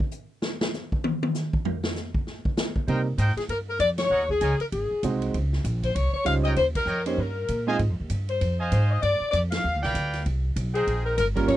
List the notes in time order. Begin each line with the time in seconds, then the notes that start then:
0.00 kick
0.11 hi-hat pedal
0.42 snare
0.61 snare
0.74 snare, hi-hat pedal
0.92 kick
1.04 high tom
1.23 high tom
1.35 snare, hi-hat pedal
1.53 kick
1.65 floor tom
1.83 snare
1.96 snare, hi-hat pedal
2.14 kick
2.27 snare
2.45 kick
2.57 snare, hi-hat pedal
2.76 kick
2.87 C3 G3 A#3 C4 D#4 A#4 C5 D#5 G5, ride
3.18 G#2 A#4 C5 D#5 G5, kick, hi-hat pedal, ride
3.28 snare
3.36 G#4, muted upright bass stroke, snare, ride
3.49 G2 A#4, kick, ride
3.70 A#4
3.79 F2 D5, kick, hi-hat pedal, ride
3.98 C#5, snare, ride
4.10 D#2 A#4 C#5 D#5 F#5
4.29 G#4, kick
4.40 C#2 A#4 C#5 D#5 G#5, kick, hi-hat pedal, ride
4.60 A#4, ride
4.72 G#1 G#4, kick, ride
4.91 muted upright bass stroke
5.03 C2 G#3 C4 D#4 F#4 C5, kick, hi-hat pedal, ride
5.22 ride
5.34 C#2, kick, ride
5.53 snare
5.64 A#1, kick, hi-hat pedal, ride
5.83 C5, kick, ride
5.95 C2 C#5, kick, ride
6.13 C#5, muted upright bass stroke
6.24 C#2 G3 C#4 D#4 F4 C5 F5, kick, hi-hat pedal, ride
6.44 A#4 C#5 D#5 G5, ride
6.56 D#2 C5, kick, ride
6.75 A#4, kick, crash
6.86 F2 A#4 C#5 D#5 G5, hi-hat pedal
7.06 A#3 C#4 D#4 G4 C5 C#5, ride
7.18 G2 A#4, kick
7.48 A#2, kick, hi-hat pedal, ride
7.67 G#3 C4 D#4 F4 C5 D#5 F5 G#5
7.79 G#2, kick, ride
7.90 F2
8.00 D#2
8.10 G2, kick, hi-hat pedal, ride
8.29 C5, ride
8.41 F2, kick, ride
8.59 C5 D#5 F5 G#5
8.72 G#2 C5, kick, hi-hat pedal, ride
8.91 D#5
9.03 G2 D5, kick, ride
9.20 muted upright bass stroke
9.32 F2 D5, kick, hi-hat pedal, ride
9.51 F5, snare, ride
9.64 D#2
9.74 D2
9.82 B1 B4 D5 F5 G5, snare
9.94 D2, kick, hi-hat pedal, ride
10.13 snare, ride
10.26 C2, kick, ride
10.56 B1, kick, hi-hat pedal, ride
10.74 G#4 A#4 C5 D#5 G5, ride
10.87 A#1, kick, ride
11.06 A#4
11.18 G1 A#4, kick, hi-hat pedal, ride
11.36 G3 A#3 C#4 F4 A#4, kick, ride
11.48 G2 F3 A#3 C#4 C#5, kick, snare, ride